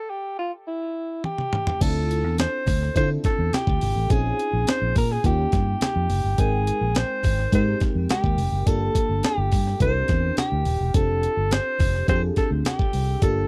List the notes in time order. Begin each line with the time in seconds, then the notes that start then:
Already playing: A4
0.10 G4
0.39 F4
0.67 E4
1.24 G4, high tom
1.38 mid tom
1.53 mid tom
1.67 floor tom
1.81 D2 C4 D4 E4 F4 A4, kick, closed hi-hat, crash
2.11 closed hi-hat
2.24 E2
2.38 C5, snare, closed hi-hat, high conga
2.67 D2, kick, open hi-hat, muted conga, low conga
2.83 snare
2.95 D3 C4 D4 E4 F4 A4 C5, kick, closed hi-hat, muted conga
3.24 A4, kick, snare, closed hi-hat, muted conga
3.39 E2
3.53 G4, snare, closed hi-hat, high conga
3.67 D2, kick
3.81 G#1, open hi-hat, high conga
3.96 A1
4.10 A#1 C4 C#4 D#4 F4 G#4, kick, closed hi-hat
4.39 closed hi-hat
4.53 A#1
4.67 C5, snare, closed hi-hat, high conga
4.82 A#1
4.96 A#2 A#4, kick, open hi-hat, muted conga
5.11 G#4, snare
5.24 D#2 A#3 C#4 D#4 F4 G4, kick, closed hi-hat, muted conga, low conga
5.52 G2, kick, snare, closed hi-hat, muted conga, low conga
5.81 G4, snare, closed hi-hat, high conga
5.96 F2
6.10 F#1, open hi-hat, high conga
6.24 G1
6.38 G#1 G#3 C4 D#4 G#4 A#4 G5, kick, closed hi-hat
6.67 closed hi-hat
6.81 A#1
6.95 C5, snare, closed hi-hat, high conga
7.23 G#1, kick, open hi-hat, muted conga, low conga
7.39 snare
7.52 G#2 G#3 C4 D#4 G4 A#4 C5, kick, closed hi-hat, muted conga
7.80 kick, snare, closed hi-hat, muted conga
7.95 F2
8.09 G4, snare, closed hi-hat, high conga
8.24 D#2, kick
8.38 F1, open hi-hat, high conga
8.52 F#1
8.66 G1 A#3 D4 F4 G4 A4, kick, closed hi-hat
8.95 kick, closed hi-hat
9.09 G1
9.23 G4, snare, closed hi-hat, high conga
9.38 G1
9.51 G2, kick, open hi-hat, muted conga
9.67 snare
9.80 C2 C4 D4 E4 G4 A4 C5, kick, closed hi-hat, muted conga, low conga
9.88 A#4
10.08 E2, kick, snare, closed hi-hat, muted conga, low conga
10.37 G4, snare, closed hi-hat, high conga
10.52 D2
10.65 D#1, open hi-hat, high conga
10.81 E1
10.94 F1 C4 D4 F4 G4 A4, kick, closed hi-hat
11.23 closed hi-hat
11.37 G1
11.51 C5, snare, closed hi-hat, high conga
11.79 F1, kick, open hi-hat, muted conga, low conga
11.95 snare
12.08 F2 C4 D4 F4 G4 G#4 C5, kick, closed hi-hat, muted conga
12.15 A4
12.36 A4, kick, snare, closed hi-hat, muted conga
12.51 D2
12.65 G4, snare, closed hi-hat, high conga
12.79 kick
12.93 C2, open hi-hat, high conga
13.22 G1 A#3 D4 F4 G4 A4, kick, closed hi-hat